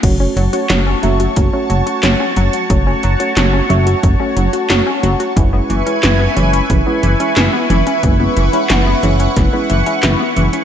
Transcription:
<<
  \new Staff \with { instrumentName = "Analog synth pad" } { \time 4/4 \key fis \minor \tempo 4 = 90 << { <fis' cis'' cis'''>1~ | <fis' cis'' cis'''>1 | <e' b' cis'''>1~ | <e' b' cis'''>1 | } \\ { a''1~ | a''1 | gis''1 | fis''1 | } >> }
  \new Staff \with { instrumentName = "FM electric piano" } { \time 4/4 \key fis \minor <a cis' fis' cis''>16 <a cis' fis' cis''>8 <a cis' fis' cis''>16 <a cis' fis' cis''>8 <a cis' fis' e''>8 <a cis' fis' cis''>16 <a cis' fis' cis''>8 <a cis' fis' fis''>16 <a cis' fis' cis''>16 r16 <a cis' fis' cis''>8 | <a cis' fis' cis''>16 <a cis' fis' cis''>8 <a cis' fis' cis''>16 <a cis' fis' cis''>8 <a cis' fis' e''>8 <a cis' fis' cis''>16 <a cis' fis' cis''>8 <a cis' fis' fis''>16 <a cis' fis' cis''>16 r16 <a cis' fis' cis''>8 | <gis cis' e' b'>16 <gis cis' e' b'>8 <gis cis' e' b'>16 <gis cis' e' b'>8 <gis cis' e' cis''>8 <gis cis' e' b'>16 <gis cis' e' b'>8 <gis cis' e' e''>16 <gis cis' e' b'>16 r16 <gis cis' e' b'>8 | <gis cis' e' b'>16 <gis cis' e' b'>8 <gis cis' e' b'>16 <gis cis' e' b'>8 <gis cis' e' cis''>8 <gis cis' e' b'>16 <gis cis' e' b'>8 <gis cis' e' e''>16 <gis cis' e' b'>16 r16 <gis cis' e' b'>8 | }
  \new Staff \with { instrumentName = "Synth arpeggio sound" } { \clef bass \time 4/4 \key fis \minor fis16 cis'16 fis16 fis'16 fis16 cis'16 fis16 fis'16 fis16 cis'16 fis16 fis'16 fis16 cis'16 fis16 fis'16 | fis16 cis'16 fis16 fis'16 fis16 cis'16 fis16 fis'16 fis16 cis'16 fis16 fis'16 fis16 cis'16 fis16 fis'16 | e16 b16 e16 cis'16 e16 b16 e16 cis'16 e16 b16 e16 cis'16 e16 b16 e16 cis'16 | e16 b16 e16 cis'16 e16 b16 e16 cis'16 e16 b16 e16 cis'16 e16 b16 e16 cis'16 | }
  \new Staff \with { instrumentName = "Analog synth bass" } { \clef bass \time 4/4 \key fis \minor fis,,8 fis,,8 fis,,8 fis,,8 fis,,8 fis,,8 fis,,8 fis,,8 | fis,,8 fis,,8 fis,,8 fis,,8 fis,,8 fis,,8 fis,,8 fis,,8 | fis,,8 fis,,8 fis,,8 fis,,8 fis,,8 fis,,8 fis,,8 fis,,8 | fis,,8 fis,,8 fis,,8 fis,,8 fis,,8 fis,,8 fis,,8 fis,,8 | }
  \new DrumStaff \with { instrumentName = "Drums" } \drummode { \time 4/4 <cymc hh bd>8 hh16 hh16 <hc hh sn>8 hh16 hh16 <hh bd>8 hh16 hh16 <hc hh sn>8 hh16 hh16 | <hh bd>8 hh16 hh16 <hc hh sn>8 hh16 hh16 <hh bd>8 hh16 hh16 <hc hh sn>8 hh16 hh16 | <hh bd>8 hh16 hh16 <hc hh sn>8 hh16 hh16 <hh bd>8 hh16 hh16 <hc hh sn>8 hh16 hh16 | <hh bd>8 hh16 hh16 <hc hh sn>8 hh16 hh16 <hh bd sn>8 hh16 hh16 <hc hh sn>8 hh16 hh16 | }
>>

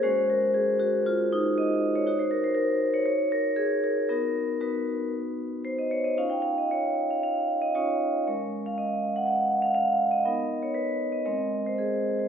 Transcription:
\new Staff \with { instrumentName = "Vibraphone" } { \time 4/4 \key aes \major \tempo 4 = 117 << { c''8 bes'8 aes'8 ges'8 f'8 ees'8 ees''8. des''16~ | des''16 c''16 bes'16 c''16 bes'8. des''16 des''8 bes'8 aes'8 bes'8 | ais'4 b'2 c''16 dis''16 des''16 dis''16 | f''16 g''16 f''16 ees''16 des''8. f''16 f''8. ees''16 des''4 |
r8. f''16 ees''8. ges''16 ges''8. f''16 f''8. ees''16~ | ees''8. des''16 b'8. dis''16 ees''8. c''16 aes'8. c''16 | } \\ { <aes des' ges'>1 | <ees' ges'>1 | <b dis' fis'>4 <b dis' fis'>2. | <des' ees' f'>2. <des' ees' f'>4 |
<aes des' bes'>1 | <b dis' ais'>2 <aes c' bes'>2 | } >> }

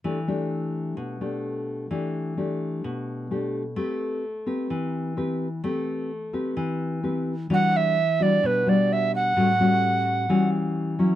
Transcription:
<<
  \new Staff \with { instrumentName = "Recorder" } { \time 4/4 \key e \minor \tempo 4 = 129 r1 | r1 | r1 | r1 |
fis''8 e''4 d''8 b'8 d''8 e''8 fis''8~ | fis''2~ fis''8 r4. | }
  \new Staff \with { instrumentName = "Nylon-string guitar" } { \time 4/4 \key e \minor << { <a d' g'>8 <a d' g'>2 <a d' g'>4. | <a d' g'>4 <a d' g'>2 <a d' g'>8 r8 | <c' g' b'>4 r8 <c' g' b'>4. <c' g' b'>8 r8 | <c' g' b'>4 r8 <c' g' b'>4. <c' g' b'>8 r8 |
<g d' fis'>4 r8 <g d' fis'>4 <g d' fis'>4. | <g cis' fis'>8 <g cis' fis'>4. <g cis' fis'>4. <fis cis' e'>8 | } \\ { e2 b,2 | e2 b,2 | a2 e2 | a2 e2 |
e2 b,2 | a,2 e2 | } >> }
>>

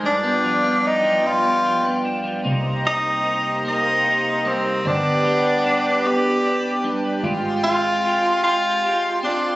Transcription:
<<
  \new Staff \with { instrumentName = "Analog synth pad" } { \time 6/8 \key c \minor \tempo 4. = 50 <f' b' d'' g''>2. | <g' c'' ees'' bes''>2. | <g' b' d'' b''>2. | <aes f' g'' c'''>2. | }
  \new Staff \with { instrumentName = "Tenor saxophone" } { \time 6/8 \key c \minor d'4 ees'8 f'4 r8 | r8 ees'4 ees'4 c'8 | d'4. g'4 r8 | r8 f'4 f'4 d'8 | }
  \new Staff \with { instrumentName = "French horn section" } { \time 6/8 \key c \minor r2. | bes2. | b2 r8 d'8 | f'2. | }
  \new Staff \with { instrumentName = "Clean electric guitar" } { \time 6/8 \key c \minor g,16 b16 f16 b8 f16 g,16 b16 f16 b16 d'16 f16 | <c ees'>8 g8 ees'8 bes8 ees'8 g8 | <g, d'>8 g8 d'8 b8 d'8 g8 | <aes g'>8 c'8 g'8 f'8 g'8 c'8 | }
  \new Staff \with { instrumentName = "Fingered electric bass" } { \clef bass \time 6/8 \key c \minor r2. | c,2. | g,,2. | aes,,2. | }
>>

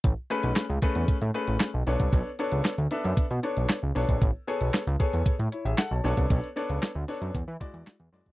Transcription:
<<
  \new Staff \with { instrumentName = "Grand piano" } { \time 4/4 \key a \major \tempo 4 = 115 << { r1 | r1 | r2 r8 <e' cis''>16 <gis' e''>16 <a' fis''>16 <cis'' a''>8 r16 | r1 | } \\ { r8 <a cis' gis' b'>8 r8 <a cis' gis' b'>8 r8 <a cis' gis' b'>8 r8 <b d' a' cis''>8~ | <b d' a' cis''>8 <b d' a' cis''>8 r8 <b d' a' e''>8 r8 <b d' a' cis''>8 r8 <b d' a' cis''>8 | r8 <b gis' a' cis''>8 r8 <b gis' a' cis''>8 r4. <b d' a' cis''>8~ | <b d' a' cis''>8 <b d' a' cis''>8 r8 <b d' a' cis''>8 r8 <gis e' fis' d''>8 r8 <gis e' fis' d''>8 | } >> }
  \new Staff \with { instrumentName = "Analog synth bass" } { \clef bass \time 4/4 \key a \major a,,16 r8 b,,16 r16 cis,16 r16 e,16 a,16 a,16 r16 a,,16 r16 b,,16 b,,16 c,16 | b,,16 r8 cis,16 r16 d,16 r16 fis,16 b,16 b,16 r16 b,,16 r16 cis,16 b,,16 bes,,16 | a,,16 r8 b,,16 r16 cis,16 r16 e,16 a,16 a,16 r16 a,,16 r16 b,,16 b,,16 c,16 | b,,16 r8 cis,16 r16 d,16 r16 fis,16 e,16 e16 r16 e,16 r16 e,16 fis,16 f,16 | }
  \new DrumStaff \with { instrumentName = "Drums" } \drummode { \time 4/4 <hh bd>8 hh16 hh16 <hc hh sn>16 hh16 <hh bd>16 hh16 <hh bd>16 hh16 hh16 hh16 <hc hh sn>8 hho16 <hh bd>16 | <hh bd>8 hh16 hh16 <hc hh sn>16 hh16 hh16 hh16 <hh bd>16 hh16 hh16 hh16 <hc hh sn>8 hho16 <hh bd>16 | <hh bd>8 hh16 hh16 <hc hh sn>16 hh16 <hh bd>16 hh16 <hh bd>16 hh16 hh16 hh16 <hc hh sn>8 hho16 <hh bd>16 | <hh bd>16 hh16 hh16 hh16 <hc hh sn>8 hho16 hh16 <hh bd>8 <hh bd>16 hh16 <hc hh sn>16 hh16 hho16 <hh bd>16 | }
>>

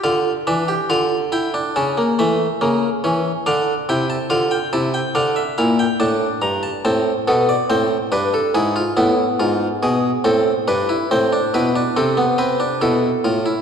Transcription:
<<
  \new Staff \with { instrumentName = "Harpsichord" } { \time 4/4 \key d \minor \tempo 4 = 70 << { f''8 e''8 f''8 g''8 a''8 e''4. | f''8 g''16 a''16 f''16 g''16 a''16 g''16 f''16 e''16 f''16 g''16 a''8 bes''16 a''16 | a''8 a'16 d''16 c''8 b'16 a'16 gis'16 f'16 e'8 f'8 gis'8 | a'8 b'8 c''8 b'8 a'8 b'8 a'4 | } \\ { f'8 d'16 g'16 f'8 e'16 d'16 cis'16 bes16 a8 bes8 cis'8 | d'8 e'8 f'8 e'8 d'8 e'8 d'4 | c'8 b8 c'8 d'8 e'8 b4. | c'8 d'16 e'16 c'16 d'16 e'16 d'16 c'16 b16 c'16 d'16 e'8 f'16 e'16 | } >> }
  \new Staff \with { instrumentName = "Harpsichord" } { \clef bass \time 4/4 \key d \minor d8 e8 d4 cis8 e8 cis8 e8 | d8 c8 d8 c8 d8 bes,8 a,8 g,8 | a,8 b,8 a,8 g,8 gis,8 a,8 gis,8 b,8 | a,8 g,8 a,8 b,8 c4 b,8 a,8 | }
>>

